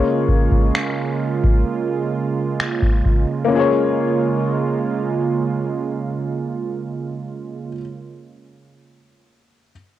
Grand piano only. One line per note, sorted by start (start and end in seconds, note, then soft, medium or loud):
0.00 3.43 A#3 medium
0.00 3.47 C#4 medium
0.00 3.48 F4 medium
0.00 3.49 G#4 medium
0.00 3.50 C#5 medium
3.45 7.66 A#3 medium
3.45 7.70 C#4 medium
3.52 7.74 F4 medium
3.52 7.77 G#4 medium
3.59 7.81 C#5 medium